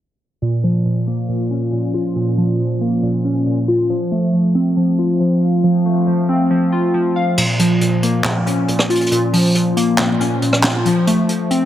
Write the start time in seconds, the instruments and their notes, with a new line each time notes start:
0.42 synth keys A#2
0.64 synth keys F3
0.85 synth keys A#2
1.07 synth keys A#3
1.29 synth keys A#2
1.51 synth keys C#4
1.72 synth keys A#2
1.94 synth keys F4
2.16 synth keys A#2
2.38 synth keys F3
2.59 synth keys A#2
2.81 synth keys A#3
3.03 synth keys A#2
3.25 synth keys C#4
3.46 synth keys A#2
3.68 synth keys F4
3.90 synth keys F3
4.12 synth keys A3
4.33 synth keys F3
4.55 synth keys C4
4.77 synth keys F3
4.99 synth keys F4
5.20 synth keys F3
5.42 synth keys F5
5.64 synth keys F3
5.85 synth keys A3
6.07 synth keys F3
6.29 synth keys C4
6.51 synth keys F3
6.72 synth keys F4
6.94 synth keys F3
7.16 synth keys F5
7.38 synth keys A#2, crash
7.59 synth keys F3, closed hi-hat
7.81 synth keys A#2, closed hi-hat
8.03 synth keys A#3, closed hi-hat
8.24 synth keys A#2, snare, clap
8.46 synth keys C#4, closed hi-hat
8.68 synth keys A#2, closed hi-hat
8.79 cross-stick
8.90 synth keys F4, closed hi-hat
8.95 closed hi-hat
9.01 closed hi-hat
9.06 closed hi-hat
9.12 synth keys A#2, closed hi-hat
9.33 synth keys F3, open hi-hat
9.55 synth keys A#2, closed hi-hat
9.77 synth keys A#3, closed hi-hat
9.98 synth keys A#2, snare, clap
10.20 synth keys C#4, closed hi-hat
10.42 synth keys A#2, closed hi-hat
10.53 cross-stick
10.63 synth keys F4, snare, clap
10.85 synth keys F3, closed hi-hat
11.07 synth keys A3, closed hi-hat
11.29 synth keys F3, closed hi-hat
11.51 synth keys C4, closed hi-hat